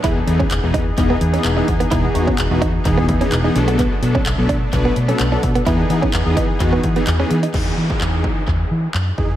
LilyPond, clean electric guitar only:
\new Staff \with { instrumentName = "Clean electric guitar" } { \time 4/4 \key e \major \tempo 4 = 128 e'16 r8 cis'16 r8 dis'16 r8 b16 r16 cis'16 r16 dis'16 r16 b16 | e'16 r8 cis'16 r8 dis'16 r8 b16 r16 cis'16 r16 dis'16 r16 b16 | b16 r8 cis'16 r8 d'16 r8 b16 r16 cis'16 r16 d'16 r16 b16 | e'16 r8 cis'16 r8 dis'16 r8 b16 r16 b16 r16 cis'16 r16 dis'16 |
r1 | }